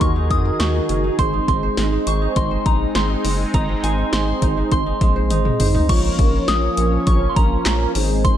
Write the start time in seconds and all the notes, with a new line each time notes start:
Already playing: D#3 F#3 D#4 F#4 G#4 A#4
0.01 D#2 A#4 C#6, kick, closed hi-hat
0.16 D#4
0.31 F2 F#3 D#6, kick, closed hi-hat
0.45 A#4
0.60 D#2 D#4 C#6, snare, closed hi-hat
0.75 F#3
0.89 F#1 A#4, closed hi-hat
1.04 D#4
1.19 G#1 G#3 C4 D#4 G#4 C5 C6, kick, closed hi-hat
1.33 D#4
1.48 G#1 G#3 C6, kick, closed hi-hat
1.63 C5
1.77 G#1 D#4, snare, closed hi-hat
1.92 G#3
2.07 G#1 C5 C#6, closed hi-hat
2.22 D#4
2.36 G#1 G#3 C6, kick, closed hi-hat
2.51 C5
2.66 A#1 D#4 A#5, kick, closed hi-hat
2.95 G#1 C5 C6, snare, closed hi-hat
3.10 D#4
3.25 F#1 G#3, open hi-hat
3.54 G#1 D#4 A#5, kick, closed hi-hat
3.69 G#3
3.83 G#1 C5 G#5, closed hi-hat
3.98 D#4
4.13 G#1 G#3 C6, snare, closed hi-hat
4.28 C5
4.42 G#1 D#4, kick, closed hi-hat
4.57 G#3
4.72 G#1 C5 C6, kick, closed hi-hat
4.86 D#4
5.01 A#1 G#3, kick, closed hi-hat
5.16 C5
5.30 G#1 D#4, closed hi-hat, high tom
5.45 G#3, mid tom
5.60 G#1 C5, mid tom, open hi-hat
5.75 D#4, floor tom
5.89 A#1 F3 A#3 C#4 F4 A#4 C#5 C#6, kick, closed hi-hat, crash
6.19 A#1, kick, closed hi-hat
6.48 A#1 D#6, snare, closed hi-hat
6.77 A#1, closed hi-hat
7.07 A#1 C#6, kick, closed hi-hat
7.29 C6
7.36 A#1 A#5, kick, closed hi-hat
7.66 A#1, snare, clap, closed hi-hat
7.95 G#1 D#3 G#3 C4 D#4 G#4 C5, open hi-hat
8.24 C6, kick, closed hi-hat